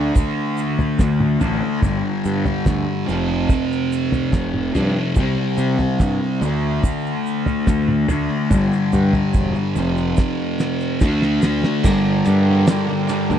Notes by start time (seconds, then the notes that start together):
Already playing: D2 D3 A3 D4
0.16 kick, floor tom, shaker
0.57 shaker
0.79 floor tom, shaker
0.99 D2, kick, snare, shaker
1.20 mid tom
1.41 A1 D3 A3 D4, floor tom, shaker
1.82 G1 G2 D3 G3, kick, floor tom, shaker
2.25 G2, shaker
2.45 floor tom, shaker
2.66 D2, kick, snare, shaker
3.06 F1 F2 C3 F3, shaker
3.49 kick, floor tom, shaker
3.72 shaker
3.92 shaker
4.12 floor tom, shaker
4.32 F1, kick, snare, shaker
4.54 mid tom
4.75 F2 G2 C3 F3, floor tom, shaker
5.16 C2 C3 G3, kick, floor tom, shaker
5.20 C4
5.58 C3, shaker
5.79 floor tom, shaker
6.00 G2, kick, snare, shaker
6.41 D2 D3 A3 D4, shaker
6.83 kick, floor tom, shaker
7.06 shaker
7.26 shaker
7.46 floor tom, shaker
7.67 D2, kick, snare, shaker
7.88 mid tom
8.08 D2 D3 A3 D4, floor tom, shaker
8.50 G1 G2 D3, kick, floor tom, shaker
8.55 G3
8.72 shaker
8.93 G2, floor tom, shaker
9.13 floor tom, shaker
9.34 E1, kick, shaker
9.55 shaker
9.76 F1 F2 C3 F3, shaker
9.97 shaker
10.17 kick, snare, shaker
10.60 snare, shaker
10.80 shaker
11.01 D2 D3 A3, kick, snare, shaker
11.06 D4
11.22 snare, shaker
11.42 D2, snare, shaker
11.64 snare
11.84 G1 G2 D3 G3 G4 A4 A#4 D5, kick, crash, shaker
12.25 G2, ride, shaker
12.47 D3 G3
12.67 G2 D3 G3, snare, ride, shaker
12.88 D3 G3
13.08 G2 D3 G3, ride, shaker
13.30 D2, muted distorted electric guitar stroke, shaker